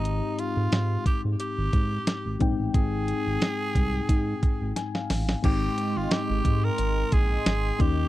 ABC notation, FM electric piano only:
X:1
M:4/4
L:1/16
Q:"Swing 16ths" 1/4=89
K:Ablyd
V:1 name="FM electric piano"
[A,CEG]12- [A,CEG]2 [A,CEg]2- | [A,CEg]12- [A,CEg]2 z2 | [A,CEg]12- [A,CEg]2 [B,_DEG]2 |]
V:2 name="FM electric piano" clef=bass
A,,4 z8 z2 A,,2- | A,,4 z8 a f3 | A,,6 z8 E,2 |]